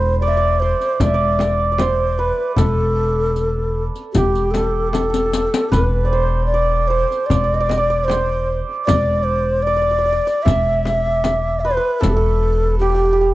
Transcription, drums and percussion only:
0.21 tombak ka soft
0.41 tombak ka soft
0.80 riq soft
0.80 tombak ka soft
1.00 riq medium
1.00 tombak dum medium
1.00 frame drum medium
1.20 tombak ka soft
1.39 riq soft
1.39 tombak tek medium
1.39 frame drum medium
1.60 tombak ka soft
1.78 riq soft
1.78 tombak tek medium
1.78 frame drum medium
2.38 tombak ka soft
2.56 riq medium
2.56 tombak dum medium
2.56 frame drum medium
2.77 tombak ka soft
3.36 riq soft
3.36 tombak ka soft
3.56 tombak ka soft
3.95 riq soft
3.95 tombak ka soft
4.15 riq medium
4.15 tombak dum medium
4.15 frame drum medium
4.35 riq soft
4.54 riq soft
4.54 tombak tek medium
4.54 frame drum medium
4.74 tombak ka soft
4.93 riq medium
4.93 tombak tek medium
4.93 frame drum medium
5.14 riq medium
5.32 riq medium
5.32 tombak ka soft
5.52 riq medium
5.52 tombak ka soft
5.72 riq medium
5.72 tombak dum medium
5.72 frame drum medium
5.92 tombak ka soft
6.52 tombak ka soft
6.71 tombak ka soft
7.11 riq soft
7.11 tombak ka soft
7.30 riq medium
7.30 tombak dum medium
7.30 frame drum medium
7.50 tombak ka soft
7.69 riq soft
7.69 tombak tek medium
7.69 frame drum medium
8.10 riq soft
8.10 tombak tek medium
8.10 frame drum medium
8.69 tombak ka soft
8.88 riq medium
8.88 tombak dum medium
8.88 frame drum medium
9.09 tombak ka soft
9.68 tombak ka soft
9.87 tombak ka soft
10.27 riq soft
10.27 tombak ka soft
10.46 riq medium
10.46 frame drum medium
10.46 tombak dum medium
10.66 tombak ka soft
10.85 riq soft
10.85 tombak tek medium
10.85 frame drum medium
11.06 tombak ka soft
11.24 riq soft
11.24 tombak tek medium
11.24 frame drum medium
12.02 riq medium
12.02 tombak dum medium
12.02 frame drum medium
12.23 tombak ka soft
12.82 tombak ka soft
13.01 tombak ka soft

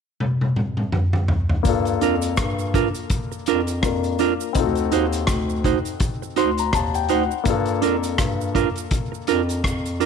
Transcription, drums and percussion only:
0.20 high tom medium
0.41 high tom soft
0.56 mid tom medium
0.77 mid tom medium
0.92 mid tom medium
1.13 mid tom medium
1.28 floor tom medium
1.49 floor tom medium
1.65 kick loud
1.65 closed hi-hat loud
1.65 cabasa medium
1.85 closed hi-hat soft
1.85 cabasa soft
2.01 closed hi-hat medium
2.01 cabasa medium
2.22 closed hi-hat soft
2.22 cabasa medium
2.37 kick loud
2.37 cross-stick loud
2.37 closed hi-hat medium
2.37 cabasa medium
2.59 cabasa soft
2.74 kick loud
2.74 closed hi-hat medium
2.74 cabasa soft
2.94 closed hi-hat soft
2.94 cabasa medium
3.10 kick loud
3.10 closed hi-hat medium
3.10 cabasa medium
3.32 cabasa soft
3.46 closed hi-hat medium
3.46 cabasa soft
3.67 closed hi-hat soft
3.67 cabasa medium
3.83 kick loud
3.83 cross-stick loud
3.83 closed hi-hat medium
3.83 cabasa medium
4.04 closed hi-hat soft
4.04 cabasa medium
4.19 closed hi-hat medium
4.19 cabasa soft
4.40 cabasa medium
4.55 kick loud
4.55 closed hi-hat medium
4.55 cabasa medium
4.75 closed hi-hat soft
4.75 cabasa soft
4.92 closed hi-hat medium
4.92 cabasa soft
5.12 closed hi-hat medium
5.12 cabasa medium
5.27 kick loud
5.27 cross-stick loud
5.27 closed hi-hat medium
5.27 cabasa medium
5.50 cabasa soft
5.64 kick medium
5.64 closed hi-hat medium
5.64 cabasa medium
5.85 closed hi-hat soft
5.85 cabasa medium
6.00 kick loud
6.00 closed hi-hat medium
6.00 cabasa medium
6.23 cabasa soft
6.36 closed hi-hat medium
6.36 cabasa soft
6.58 closed hi-hat soft
6.58 cabasa medium
6.73 kick loud
6.73 cross-stick loud
6.73 closed hi-hat medium
6.73 cabasa medium
6.94 closed hi-hat soft
6.94 cabasa medium
7.09 closed hi-hat medium
7.09 cabasa soft
7.31 cabasa medium
7.45 kick loud
7.45 closed hi-hat medium
7.45 cabasa medium
7.66 closed hi-hat soft
7.66 cabasa soft
7.82 closed hi-hat medium
7.82 cabasa soft
8.03 closed hi-hat soft
8.03 cabasa medium
8.18 kick loud
8.18 cross-stick loud
8.18 closed hi-hat medium
8.18 cabasa medium
8.41 cabasa soft
8.55 kick medium
8.55 closed hi-hat medium
8.55 cabasa medium
8.76 closed hi-hat soft
8.76 cabasa medium
8.91 kick loud
8.91 closed hi-hat medium
8.91 cabasa medium
9.14 cabasa soft
9.27 closed hi-hat medium
9.27 cabasa soft
9.49 closed hi-hat soft
9.49 cabasa medium
9.64 kick loud
9.64 cross-stick loud
9.64 closed hi-hat medium
9.64 cabasa medium
9.86 closed hi-hat soft
9.86 cabasa medium
10.01 closed hi-hat medium
10.01 cabasa soft

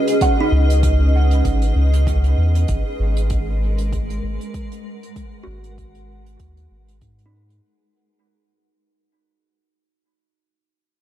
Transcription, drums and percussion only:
0.08 closed hi-hat medium
0.21 kick loud
0.21 closed hi-hat medium
0.70 closed hi-hat medium
0.83 kick loud
0.83 closed hi-hat medium
1.31 closed hi-hat soft
1.45 kick loud
1.45 closed hi-hat medium
1.62 closed hi-hat soft
1.93 closed hi-hat medium
2.07 kick loud
2.07 closed hi-hat medium
2.24 closed hi-hat soft
2.55 closed hi-hat medium
2.68 kick loud
2.68 closed hi-hat medium
3.17 closed hi-hat medium
3.30 kick loud
3.30 closed hi-hat medium
3.78 closed hi-hat medium
3.92 kick loud
3.92 closed hi-hat medium
4.10 closed hi-hat soft
4.41 closed hi-hat medium
4.54 kick loud
4.54 closed hi-hat medium
4.72 closed hi-hat soft
5.03 closed hi-hat medium
5.16 kick medium
5.16 closed hi-hat medium
5.64 closed hi-hat soft
5.78 kick loud
5.78 closed hi-hat medium
5.95 closed hi-hat soft
6.26 closed hi-hat soft
6.39 kick medium
6.39 closed hi-hat medium
6.57 closed hi-hat soft
6.88 closed hi-hat soft
7.01 kick medium
7.01 closed hi-hat medium
7.18 closed hi-hat soft
7.50 closed hi-hat soft

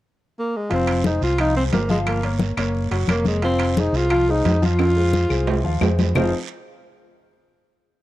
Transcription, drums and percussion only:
0.71 high conga soft
0.71 high timbale medium
0.71 long guiro medium
0.87 high conga soft
0.87 high timbale medium
0.87 claves medium
1.04 high conga medium
1.04 short guiro medium
1.21 high conga soft
1.21 short guiro medium
1.38 high conga soft
1.38 high timbale medium
1.38 long guiro medium
1.38 claves medium
1.56 high conga soft
1.73 high conga medium
1.73 high timbale medium
1.73 low timbale medium
1.73 short guiro medium
1.89 high conga medium
1.89 short guiro medium
2.06 high conga soft
2.06 high timbale medium
2.06 long guiro medium
2.06 claves medium
2.23 high conga soft
2.23 high timbale medium
2.39 high conga medium
2.39 short guiro medium
2.57 high conga soft
2.57 high timbale medium
2.57 short guiro medium
2.57 claves medium
2.74 high conga soft
2.74 long guiro medium
2.91 high conga soft
2.91 high timbale medium
3.08 high conga medium
3.08 high timbale medium
3.08 short guiro medium
3.08 claves medium
3.25 high conga medium
3.25 short guiro medium
3.42 high conga soft
3.42 high timbale medium
3.42 long guiro medium
3.59 high conga soft
3.59 high timbale medium
3.59 claves medium
3.77 high conga medium
3.77 short guiro medium
3.94 high conga soft
3.94 short guiro medium
4.10 high conga soft
4.10 high timbale medium
4.10 long guiro medium
4.10 claves medium
4.29 high conga soft
4.45 high conga medium
4.45 high timbale medium
4.45 low timbale medium
4.45 short guiro medium
4.62 high conga medium
4.62 short guiro medium
4.79 high conga soft
4.79 high timbale medium
4.79 long guiro medium
4.79 claves medium
4.97 high conga soft
5.13 high conga medium
5.13 short guiro medium
5.30 high conga soft
5.30 short guiro medium
5.30 claves medium
5.47 high conga soft
5.47 low timbale loud
5.47 long guiro medium
5.65 high conga soft
5.81 high conga medium
5.81 low timbale loud
5.81 short guiro medium
5.81 claves medium
5.99 high conga medium
5.99 low timbale medium
5.99 short guiro medium
6.15 low conga loud
6.15 low timbale loud
6.15 long guiro medium
6.15 claves loud

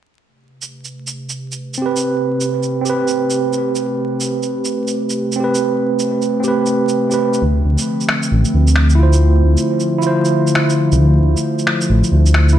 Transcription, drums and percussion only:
0.62 shaker soft
0.84 shaker soft
1.07 shaker medium
1.29 shaker soft
1.52 shaker medium
1.74 shaker soft
1.96 shaker medium
2.41 shaker medium
2.63 shaker soft
2.86 shaker medium
3.08 shaker soft
3.30 shaker medium
3.53 shaker soft
3.75 shaker medium
4.20 shaker medium
4.43 shaker soft
4.65 shaker medium
4.87 shaker soft
5.10 shaker medium
5.32 shaker soft
5.55 shaker soft
5.99 shaker soft
6.22 shaker soft
6.44 shaker soft
6.66 shaker soft
6.88 shaker soft
7.11 shaker soft
7.33 shaker soft
7.78 shaker soft
8.00 shaker soft
8.09 finger snap medium
8.23 shaker soft
8.45 shaker soft
8.67 shaker soft
8.76 finger snap medium
8.90 shaker soft
9.13 shaker soft
9.57 shaker soft
9.80 shaker soft
10.02 shaker soft
10.25 shaker soft
10.47 shaker soft
10.55 finger snap medium
10.70 shaker soft
10.92 shaker soft
11.37 shaker medium
11.59 shaker soft
11.67 finger snap medium
11.81 shaker medium
12.04 shaker soft
12.26 shaker medium
12.34 finger snap medium
12.49 shaker soft

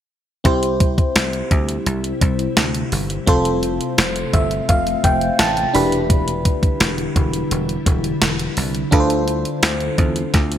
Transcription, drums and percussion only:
0.45 kick loud
0.45 closed hi-hat medium
0.63 closed hi-hat medium
0.80 kick medium
0.80 closed hi-hat medium
0.98 kick medium
0.98 closed hi-hat soft
1.16 snare loud
1.16 closed hi-hat medium
1.33 closed hi-hat soft
1.51 kick medium
1.51 closed hi-hat medium
1.69 closed hi-hat medium
1.86 closed hi-hat medium
2.04 closed hi-hat soft
2.21 kick medium
2.21 closed hi-hat medium
2.39 closed hi-hat soft
2.57 snare loud
2.57 closed hi-hat medium
2.75 closed hi-hat medium
2.92 open hi-hat medium
3.10 closed hi-hat soft
3.27 kick loud
3.27 closed hi-hat medium
3.45 closed hi-hat medium
3.63 closed hi-hat medium
3.81 closed hi-hat soft
3.98 snare loud
3.98 closed hi-hat medium
4.16 closed hi-hat soft
4.33 kick medium
4.33 closed hi-hat medium
4.51 closed hi-hat medium
4.69 kick medium
4.69 closed hi-hat medium
4.87 closed hi-hat soft
5.04 kick medium
5.04 closed hi-hat medium
5.21 closed hi-hat soft
5.39 snare loud
5.39 closed hi-hat loud
5.57 closed hi-hat medium
5.75 open hi-hat medium
5.92 closed hi-hat soft
6.10 kick loud
6.10 closed hi-hat medium
6.28 closed hi-hat medium
6.45 kick medium
6.45 closed hi-hat medium
6.63 kick medium
6.63 closed hi-hat soft
6.80 snare loud
6.80 closed hi-hat medium
6.98 closed hi-hat soft
7.16 kick medium
7.16 closed hi-hat medium
7.33 closed hi-hat medium
7.51 closed hi-hat medium
7.69 closed hi-hat soft
7.86 kick medium
7.86 closed hi-hat medium
8.04 closed hi-hat soft
8.22 snare loud
8.22 closed hi-hat medium
8.39 closed hi-hat medium
8.57 open hi-hat medium
8.75 closed hi-hat soft
8.92 kick loud
8.92 closed hi-hat medium
9.10 closed hi-hat medium
9.28 closed hi-hat medium
9.45 closed hi-hat soft
9.63 snare loud
9.63 closed hi-hat medium
9.80 closed hi-hat soft
9.98 kick medium
9.98 closed hi-hat medium
10.16 closed hi-hat soft
10.34 kick medium
10.34 snare medium
10.34 closed hi-hat medium
10.52 closed hi-hat soft

